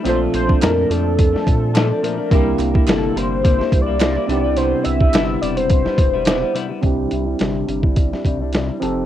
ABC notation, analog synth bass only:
X:1
M:4/4
L:1/8
Q:"Swing 16ths" 1/4=106
K:C
V:1 name="Analog synth bass" clef=bass
_B,,, B,,, F,, F,,2 _B,,2 z | C,, C,, G,,, G,,,2 C,,2 C,,- | C,, C,, G,,, E,,,2 E,,,2 z | C,, C,, G,,, G,,,2 C,,2 F,,, |]